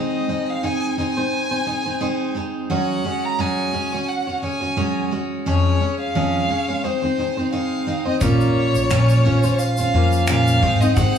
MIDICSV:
0, 0, Header, 1, 5, 480
1, 0, Start_track
1, 0, Key_signature, -5, "minor"
1, 0, Tempo, 688863
1, 1881, Time_signature, 4, 2, 24, 8
1, 7792, End_track
2, 0, Start_track
2, 0, Title_t, "Violin"
2, 0, Program_c, 0, 40
2, 0, Note_on_c, 0, 75, 67
2, 348, Note_on_c, 0, 77, 73
2, 359, Note_off_c, 0, 75, 0
2, 450, Note_on_c, 0, 80, 80
2, 461, Note_off_c, 0, 77, 0
2, 685, Note_off_c, 0, 80, 0
2, 691, Note_on_c, 0, 80, 88
2, 1619, Note_off_c, 0, 80, 0
2, 1900, Note_on_c, 0, 78, 76
2, 2266, Note_on_c, 0, 82, 79
2, 2277, Note_off_c, 0, 78, 0
2, 2373, Note_on_c, 0, 80, 85
2, 2384, Note_off_c, 0, 82, 0
2, 2844, Note_on_c, 0, 78, 72
2, 2855, Note_off_c, 0, 80, 0
2, 3084, Note_off_c, 0, 78, 0
2, 3088, Note_on_c, 0, 80, 66
2, 3538, Note_off_c, 0, 80, 0
2, 3819, Note_on_c, 0, 73, 80
2, 4158, Note_off_c, 0, 73, 0
2, 4188, Note_on_c, 0, 77, 82
2, 4769, Note_on_c, 0, 72, 74
2, 4779, Note_off_c, 0, 77, 0
2, 5244, Note_off_c, 0, 72, 0
2, 5248, Note_on_c, 0, 77, 72
2, 5592, Note_off_c, 0, 77, 0
2, 5619, Note_on_c, 0, 75, 72
2, 5718, Note_off_c, 0, 75, 0
2, 5722, Note_on_c, 0, 73, 86
2, 6683, Note_on_c, 0, 77, 86
2, 6693, Note_off_c, 0, 73, 0
2, 7162, Note_off_c, 0, 77, 0
2, 7170, Note_on_c, 0, 77, 84
2, 7533, Note_on_c, 0, 75, 83
2, 7543, Note_off_c, 0, 77, 0
2, 7638, Note_off_c, 0, 75, 0
2, 7642, Note_on_c, 0, 78, 105
2, 7792, Note_off_c, 0, 78, 0
2, 7792, End_track
3, 0, Start_track
3, 0, Title_t, "Steel-string acoustic guitar"
3, 0, Program_c, 1, 25
3, 0, Note_on_c, 1, 56, 62
3, 0, Note_on_c, 1, 60, 73
3, 0, Note_on_c, 1, 63, 73
3, 0, Note_on_c, 1, 72, 74
3, 187, Note_off_c, 1, 56, 0
3, 194, Note_off_c, 1, 63, 0
3, 195, Note_on_c, 1, 56, 44
3, 197, Note_off_c, 1, 60, 0
3, 202, Note_off_c, 1, 72, 0
3, 202, Note_on_c, 1, 63, 57
3, 205, Note_on_c, 1, 60, 52
3, 211, Note_on_c, 1, 72, 53
3, 431, Note_off_c, 1, 56, 0
3, 433, Note_off_c, 1, 63, 0
3, 437, Note_off_c, 1, 60, 0
3, 438, Note_off_c, 1, 72, 0
3, 439, Note_on_c, 1, 56, 64
3, 441, Note_on_c, 1, 63, 63
3, 445, Note_on_c, 1, 60, 60
3, 447, Note_on_c, 1, 72, 69
3, 671, Note_off_c, 1, 56, 0
3, 675, Note_off_c, 1, 63, 0
3, 679, Note_on_c, 1, 56, 51
3, 683, Note_off_c, 1, 60, 0
3, 683, Note_off_c, 1, 72, 0
3, 684, Note_on_c, 1, 63, 56
3, 690, Note_on_c, 1, 60, 53
3, 692, Note_on_c, 1, 72, 53
3, 805, Note_off_c, 1, 72, 0
3, 810, Note_off_c, 1, 60, 0
3, 812, Note_off_c, 1, 56, 0
3, 813, Note_on_c, 1, 72, 48
3, 814, Note_off_c, 1, 63, 0
3, 818, Note_on_c, 1, 60, 38
3, 825, Note_on_c, 1, 63, 37
3, 1043, Note_off_c, 1, 72, 0
3, 1048, Note_off_c, 1, 60, 0
3, 1051, Note_on_c, 1, 72, 43
3, 1054, Note_off_c, 1, 63, 0
3, 1056, Note_on_c, 1, 60, 40
3, 1062, Note_on_c, 1, 63, 39
3, 1154, Note_off_c, 1, 63, 0
3, 1159, Note_on_c, 1, 56, 53
3, 1160, Note_off_c, 1, 60, 0
3, 1160, Note_off_c, 1, 72, 0
3, 1162, Note_on_c, 1, 63, 48
3, 1169, Note_on_c, 1, 60, 52
3, 1170, Note_on_c, 1, 72, 53
3, 1283, Note_off_c, 1, 72, 0
3, 1289, Note_off_c, 1, 60, 0
3, 1291, Note_on_c, 1, 72, 43
3, 1292, Note_off_c, 1, 56, 0
3, 1293, Note_off_c, 1, 63, 0
3, 1297, Note_on_c, 1, 60, 40
3, 1304, Note_on_c, 1, 63, 41
3, 1392, Note_off_c, 1, 63, 0
3, 1395, Note_off_c, 1, 60, 0
3, 1397, Note_on_c, 1, 56, 68
3, 1398, Note_off_c, 1, 72, 0
3, 1400, Note_on_c, 1, 63, 77
3, 1403, Note_on_c, 1, 60, 75
3, 1406, Note_on_c, 1, 72, 83
3, 1627, Note_off_c, 1, 56, 0
3, 1634, Note_off_c, 1, 63, 0
3, 1636, Note_on_c, 1, 56, 53
3, 1642, Note_off_c, 1, 60, 0
3, 1642, Note_on_c, 1, 63, 53
3, 1644, Note_off_c, 1, 72, 0
3, 1650, Note_on_c, 1, 60, 58
3, 1652, Note_on_c, 1, 72, 62
3, 1873, Note_off_c, 1, 56, 0
3, 1879, Note_on_c, 1, 54, 67
3, 1881, Note_off_c, 1, 60, 0
3, 1881, Note_off_c, 1, 63, 0
3, 1881, Note_on_c, 1, 56, 71
3, 1884, Note_on_c, 1, 61, 77
3, 1884, Note_on_c, 1, 66, 62
3, 1885, Note_off_c, 1, 72, 0
3, 1888, Note_on_c, 1, 73, 77
3, 2110, Note_off_c, 1, 56, 0
3, 2115, Note_off_c, 1, 61, 0
3, 2119, Note_off_c, 1, 66, 0
3, 2119, Note_on_c, 1, 56, 49
3, 2120, Note_off_c, 1, 54, 0
3, 2123, Note_on_c, 1, 61, 56
3, 2125, Note_off_c, 1, 73, 0
3, 2127, Note_on_c, 1, 66, 57
3, 2134, Note_on_c, 1, 73, 56
3, 2353, Note_off_c, 1, 56, 0
3, 2358, Note_off_c, 1, 66, 0
3, 2360, Note_off_c, 1, 61, 0
3, 2360, Note_on_c, 1, 54, 74
3, 2361, Note_off_c, 1, 73, 0
3, 2361, Note_on_c, 1, 56, 66
3, 2366, Note_on_c, 1, 66, 68
3, 2368, Note_on_c, 1, 61, 68
3, 2370, Note_on_c, 1, 73, 75
3, 2587, Note_off_c, 1, 56, 0
3, 2595, Note_off_c, 1, 61, 0
3, 2595, Note_on_c, 1, 56, 52
3, 2599, Note_off_c, 1, 66, 0
3, 2599, Note_off_c, 1, 73, 0
3, 2601, Note_off_c, 1, 54, 0
3, 2603, Note_on_c, 1, 61, 49
3, 2607, Note_on_c, 1, 66, 61
3, 2607, Note_on_c, 1, 73, 52
3, 2724, Note_off_c, 1, 73, 0
3, 2731, Note_off_c, 1, 56, 0
3, 2732, Note_on_c, 1, 73, 46
3, 2734, Note_off_c, 1, 66, 0
3, 2735, Note_off_c, 1, 61, 0
3, 2743, Note_on_c, 1, 66, 42
3, 2747, Note_on_c, 1, 61, 40
3, 2966, Note_off_c, 1, 73, 0
3, 2975, Note_off_c, 1, 66, 0
3, 2975, Note_on_c, 1, 73, 46
3, 2981, Note_off_c, 1, 61, 0
3, 2984, Note_on_c, 1, 66, 39
3, 2990, Note_on_c, 1, 61, 35
3, 3076, Note_off_c, 1, 61, 0
3, 3080, Note_off_c, 1, 66, 0
3, 3080, Note_on_c, 1, 56, 45
3, 3083, Note_off_c, 1, 73, 0
3, 3085, Note_on_c, 1, 61, 51
3, 3089, Note_on_c, 1, 66, 52
3, 3092, Note_on_c, 1, 73, 55
3, 3202, Note_off_c, 1, 73, 0
3, 3207, Note_off_c, 1, 66, 0
3, 3210, Note_on_c, 1, 73, 45
3, 3213, Note_off_c, 1, 56, 0
3, 3215, Note_on_c, 1, 66, 37
3, 3216, Note_off_c, 1, 61, 0
3, 3225, Note_on_c, 1, 61, 42
3, 3315, Note_off_c, 1, 61, 0
3, 3319, Note_off_c, 1, 66, 0
3, 3319, Note_off_c, 1, 73, 0
3, 3321, Note_on_c, 1, 54, 59
3, 3321, Note_on_c, 1, 56, 59
3, 3323, Note_on_c, 1, 61, 62
3, 3327, Note_on_c, 1, 73, 70
3, 3328, Note_on_c, 1, 66, 72
3, 3554, Note_off_c, 1, 56, 0
3, 3559, Note_off_c, 1, 61, 0
3, 3562, Note_off_c, 1, 54, 0
3, 3562, Note_off_c, 1, 66, 0
3, 3563, Note_on_c, 1, 56, 52
3, 3565, Note_off_c, 1, 73, 0
3, 3567, Note_on_c, 1, 61, 51
3, 3571, Note_on_c, 1, 66, 53
3, 3574, Note_on_c, 1, 73, 58
3, 3798, Note_off_c, 1, 56, 0
3, 3801, Note_off_c, 1, 61, 0
3, 3804, Note_off_c, 1, 73, 0
3, 3806, Note_on_c, 1, 41, 65
3, 3806, Note_on_c, 1, 53, 69
3, 3806, Note_on_c, 1, 56, 70
3, 3807, Note_off_c, 1, 66, 0
3, 3809, Note_on_c, 1, 61, 76
3, 3813, Note_on_c, 1, 73, 74
3, 3815, Note_on_c, 1, 68, 72
3, 4037, Note_off_c, 1, 56, 0
3, 4040, Note_off_c, 1, 61, 0
3, 4045, Note_off_c, 1, 41, 0
3, 4045, Note_off_c, 1, 53, 0
3, 4046, Note_on_c, 1, 56, 52
3, 4047, Note_off_c, 1, 68, 0
3, 4048, Note_off_c, 1, 73, 0
3, 4049, Note_on_c, 1, 61, 48
3, 4056, Note_on_c, 1, 68, 49
3, 4059, Note_on_c, 1, 73, 60
3, 4279, Note_off_c, 1, 56, 0
3, 4283, Note_off_c, 1, 61, 0
3, 4286, Note_on_c, 1, 41, 70
3, 4287, Note_off_c, 1, 68, 0
3, 4287, Note_off_c, 1, 73, 0
3, 4287, Note_on_c, 1, 53, 71
3, 4287, Note_on_c, 1, 56, 67
3, 4292, Note_on_c, 1, 61, 69
3, 4295, Note_on_c, 1, 68, 68
3, 4295, Note_on_c, 1, 73, 75
3, 4515, Note_off_c, 1, 56, 0
3, 4522, Note_off_c, 1, 61, 0
3, 4523, Note_on_c, 1, 56, 57
3, 4525, Note_off_c, 1, 41, 0
3, 4525, Note_off_c, 1, 53, 0
3, 4526, Note_off_c, 1, 68, 0
3, 4530, Note_off_c, 1, 73, 0
3, 4530, Note_on_c, 1, 61, 53
3, 4534, Note_on_c, 1, 68, 58
3, 4540, Note_on_c, 1, 73, 51
3, 4648, Note_off_c, 1, 73, 0
3, 4655, Note_off_c, 1, 56, 0
3, 4655, Note_off_c, 1, 68, 0
3, 4656, Note_on_c, 1, 73, 45
3, 4659, Note_off_c, 1, 61, 0
3, 4664, Note_on_c, 1, 68, 45
3, 4669, Note_on_c, 1, 61, 40
3, 4671, Note_on_c, 1, 56, 43
3, 4758, Note_off_c, 1, 56, 0
3, 4764, Note_off_c, 1, 73, 0
3, 4766, Note_on_c, 1, 56, 55
3, 4767, Note_off_c, 1, 61, 0
3, 4768, Note_off_c, 1, 68, 0
3, 4769, Note_on_c, 1, 63, 52
3, 4773, Note_on_c, 1, 60, 58
3, 4776, Note_on_c, 1, 72, 57
3, 4883, Note_off_c, 1, 72, 0
3, 4891, Note_on_c, 1, 72, 43
3, 4892, Note_off_c, 1, 60, 0
3, 4897, Note_off_c, 1, 56, 0
3, 4899, Note_off_c, 1, 63, 0
3, 4900, Note_on_c, 1, 60, 41
3, 4909, Note_on_c, 1, 63, 36
3, 5001, Note_off_c, 1, 63, 0
3, 5001, Note_off_c, 1, 72, 0
3, 5003, Note_on_c, 1, 56, 46
3, 5006, Note_off_c, 1, 60, 0
3, 5010, Note_on_c, 1, 63, 48
3, 5015, Note_on_c, 1, 60, 54
3, 5020, Note_on_c, 1, 72, 56
3, 5127, Note_off_c, 1, 72, 0
3, 5133, Note_off_c, 1, 60, 0
3, 5135, Note_off_c, 1, 56, 0
3, 5135, Note_on_c, 1, 72, 45
3, 5139, Note_off_c, 1, 63, 0
3, 5141, Note_on_c, 1, 60, 42
3, 5150, Note_on_c, 1, 63, 35
3, 5236, Note_off_c, 1, 63, 0
3, 5241, Note_off_c, 1, 60, 0
3, 5242, Note_off_c, 1, 72, 0
3, 5243, Note_on_c, 1, 56, 66
3, 5245, Note_on_c, 1, 63, 60
3, 5249, Note_on_c, 1, 60, 63
3, 5250, Note_on_c, 1, 72, 73
3, 5473, Note_off_c, 1, 56, 0
3, 5477, Note_off_c, 1, 63, 0
3, 5481, Note_on_c, 1, 56, 65
3, 5482, Note_off_c, 1, 60, 0
3, 5486, Note_on_c, 1, 63, 55
3, 5487, Note_off_c, 1, 72, 0
3, 5490, Note_on_c, 1, 60, 65
3, 5495, Note_on_c, 1, 72, 58
3, 5602, Note_off_c, 1, 72, 0
3, 5611, Note_on_c, 1, 72, 50
3, 5612, Note_off_c, 1, 60, 0
3, 5614, Note_off_c, 1, 56, 0
3, 5617, Note_off_c, 1, 63, 0
3, 5620, Note_on_c, 1, 60, 43
3, 5626, Note_on_c, 1, 63, 44
3, 5719, Note_on_c, 1, 46, 87
3, 5721, Note_off_c, 1, 63, 0
3, 5721, Note_off_c, 1, 72, 0
3, 5722, Note_on_c, 1, 58, 73
3, 5723, Note_on_c, 1, 61, 87
3, 5725, Note_off_c, 1, 60, 0
3, 5728, Note_on_c, 1, 65, 80
3, 6194, Note_off_c, 1, 46, 0
3, 6201, Note_off_c, 1, 58, 0
3, 6202, Note_off_c, 1, 65, 0
3, 6203, Note_off_c, 1, 61, 0
3, 6203, Note_on_c, 1, 46, 70
3, 6210, Note_on_c, 1, 58, 75
3, 6210, Note_on_c, 1, 61, 79
3, 6211, Note_on_c, 1, 65, 79
3, 6435, Note_off_c, 1, 58, 0
3, 6441, Note_off_c, 1, 61, 0
3, 6443, Note_off_c, 1, 46, 0
3, 6444, Note_on_c, 1, 58, 65
3, 6447, Note_off_c, 1, 65, 0
3, 6449, Note_on_c, 1, 61, 70
3, 6455, Note_on_c, 1, 65, 68
3, 6456, Note_on_c, 1, 72, 74
3, 6566, Note_off_c, 1, 72, 0
3, 6575, Note_off_c, 1, 58, 0
3, 6575, Note_off_c, 1, 65, 0
3, 6575, Note_on_c, 1, 72, 52
3, 6578, Note_off_c, 1, 61, 0
3, 6584, Note_on_c, 1, 65, 50
3, 6590, Note_on_c, 1, 61, 42
3, 6808, Note_off_c, 1, 72, 0
3, 6815, Note_off_c, 1, 65, 0
3, 6816, Note_on_c, 1, 72, 54
3, 6822, Note_off_c, 1, 61, 0
3, 6823, Note_on_c, 1, 65, 48
3, 6830, Note_on_c, 1, 61, 48
3, 6921, Note_off_c, 1, 61, 0
3, 6923, Note_off_c, 1, 72, 0
3, 6926, Note_on_c, 1, 58, 59
3, 6927, Note_off_c, 1, 65, 0
3, 6930, Note_on_c, 1, 61, 61
3, 6937, Note_on_c, 1, 65, 58
3, 6937, Note_on_c, 1, 72, 55
3, 7162, Note_off_c, 1, 58, 0
3, 7162, Note_off_c, 1, 61, 0
3, 7164, Note_off_c, 1, 65, 0
3, 7167, Note_on_c, 1, 46, 73
3, 7169, Note_off_c, 1, 72, 0
3, 7170, Note_on_c, 1, 58, 73
3, 7171, Note_on_c, 1, 61, 73
3, 7172, Note_on_c, 1, 65, 80
3, 7178, Note_on_c, 1, 72, 87
3, 7401, Note_off_c, 1, 58, 0
3, 7404, Note_off_c, 1, 46, 0
3, 7404, Note_on_c, 1, 56, 58
3, 7406, Note_off_c, 1, 61, 0
3, 7407, Note_off_c, 1, 65, 0
3, 7410, Note_off_c, 1, 72, 0
3, 7411, Note_on_c, 1, 60, 63
3, 7411, Note_on_c, 1, 63, 62
3, 7417, Note_on_c, 1, 72, 55
3, 7525, Note_off_c, 1, 72, 0
3, 7534, Note_on_c, 1, 72, 46
3, 7535, Note_off_c, 1, 56, 0
3, 7536, Note_off_c, 1, 60, 0
3, 7538, Note_off_c, 1, 63, 0
3, 7544, Note_on_c, 1, 60, 56
3, 7550, Note_on_c, 1, 63, 43
3, 7639, Note_off_c, 1, 63, 0
3, 7642, Note_off_c, 1, 72, 0
3, 7644, Note_off_c, 1, 60, 0
3, 7644, Note_on_c, 1, 56, 82
3, 7647, Note_on_c, 1, 63, 82
3, 7653, Note_on_c, 1, 60, 78
3, 7654, Note_on_c, 1, 72, 89
3, 7792, Note_off_c, 1, 56, 0
3, 7792, Note_off_c, 1, 60, 0
3, 7792, Note_off_c, 1, 63, 0
3, 7792, Note_off_c, 1, 72, 0
3, 7792, End_track
4, 0, Start_track
4, 0, Title_t, "Upright bass"
4, 0, Program_c, 2, 32
4, 5723, Note_on_c, 2, 34, 90
4, 6067, Note_off_c, 2, 34, 0
4, 6098, Note_on_c, 2, 34, 87
4, 6417, Note_off_c, 2, 34, 0
4, 6444, Note_on_c, 2, 34, 91
4, 6895, Note_off_c, 2, 34, 0
4, 6925, Note_on_c, 2, 41, 81
4, 7406, Note_on_c, 2, 32, 88
4, 7417, Note_off_c, 2, 41, 0
4, 7792, Note_off_c, 2, 32, 0
4, 7792, End_track
5, 0, Start_track
5, 0, Title_t, "Drums"
5, 5721, Note_on_c, 9, 82, 72
5, 5722, Note_on_c, 9, 36, 99
5, 5791, Note_off_c, 9, 82, 0
5, 5792, Note_off_c, 9, 36, 0
5, 5858, Note_on_c, 9, 82, 42
5, 5928, Note_off_c, 9, 82, 0
5, 6097, Note_on_c, 9, 82, 51
5, 6167, Note_off_c, 9, 82, 0
5, 6203, Note_on_c, 9, 82, 56
5, 6206, Note_on_c, 9, 26, 84
5, 6272, Note_off_c, 9, 82, 0
5, 6276, Note_off_c, 9, 26, 0
5, 6335, Note_on_c, 9, 82, 45
5, 6405, Note_off_c, 9, 82, 0
5, 6572, Note_on_c, 9, 82, 52
5, 6642, Note_off_c, 9, 82, 0
5, 6681, Note_on_c, 9, 82, 71
5, 6750, Note_off_c, 9, 82, 0
5, 6809, Note_on_c, 9, 82, 57
5, 6878, Note_off_c, 9, 82, 0
5, 7052, Note_on_c, 9, 82, 47
5, 7122, Note_off_c, 9, 82, 0
5, 7158, Note_on_c, 9, 82, 63
5, 7160, Note_on_c, 9, 26, 97
5, 7227, Note_off_c, 9, 82, 0
5, 7229, Note_off_c, 9, 26, 0
5, 7298, Note_on_c, 9, 82, 57
5, 7368, Note_off_c, 9, 82, 0
5, 7405, Note_on_c, 9, 36, 73
5, 7474, Note_off_c, 9, 36, 0
5, 7537, Note_on_c, 9, 82, 46
5, 7607, Note_off_c, 9, 82, 0
5, 7640, Note_on_c, 9, 82, 76
5, 7642, Note_on_c, 9, 36, 105
5, 7710, Note_off_c, 9, 82, 0
5, 7711, Note_off_c, 9, 36, 0
5, 7792, End_track
0, 0, End_of_file